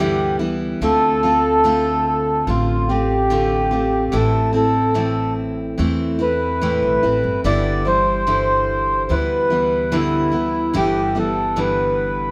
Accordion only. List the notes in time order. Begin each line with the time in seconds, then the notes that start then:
Already playing: G4
0.83 A4
2.07 A4
2.48 F4
2.89 G4
4.12 A4
4.55 A4
6.22 B4
7.46 D5
7.87 C5
9.11 B4
9.94 E4
10.76 G4
11.18 A4
11.59 B4